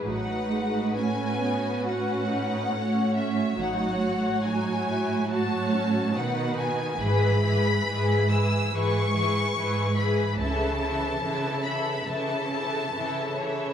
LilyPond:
<<
  \new Staff \with { instrumentName = "Violin section" } { \time 4/4 \key e \major \tempo 4 = 70 fis''4 gis''4 fis''4. e''8 | fis''4 gis''4 a''4 fis''8 gis''8 | b''4. e'''8 cis'''4. b''8 | a''4. b''8 a''4. cis''8 | }
  \new Staff \with { instrumentName = "Violin section" } { \time 4/4 \key e \major << { b'2. cis''4~ | cis''2 cis''4 b'4 | b'8 b'8 b'8 b'8 b'8 b'8 b'8 b'8 | e''8 e''8 e''8 e''8 e''8 e''8 e''8 e''8 | } \\ { fis'1 | fis'4 dis'8 e'8 fis'4 fis'4 | gis'8 gis'8 gis'8 gis'8 gis'8 gis'8 gis'8 gis'8 | a'8 a'8 a'8 a'8 a'8 a'8 a'8 a'8 | } >> }
  \new Staff \with { instrumentName = "Viola section" } { \time 4/4 \key e \major << { dis'4 cis'4 fis'8 dis'8 cis'8 cis'8 | dis'8 fis'4. fis'8 cis'8 dis'4 | e'8 e'8 e'8 e'8 e'8 e'8 e'8 e'8 | e'8 e'8 e'8 e'8 e'8 e'8 e'8 e'8 | } \\ { fis8 gis8 a8 b8 cis'4 a4 | fis2 fis4 dis4 | e8 e8 e8 e8 e8 e8 e8 e8 | e8 e8 e8 e8 e8 e8 e8 e8 | } >> }
  \new Staff \with { instrumentName = "Cello section" } { \clef bass \time 4/4 \key e \major a,1 | a,2. b,4 | gis,4 gis,4 gis,4 gis,4 | cis4 cis4 cis4 cis4 | }
  \new Staff \with { instrumentName = "Double bass section" } { \clef bass \time 4/4 \key e \major a,,4 r2. | a,,4 r2. | gis,,4 r2. | cis,4 r2. | }
>>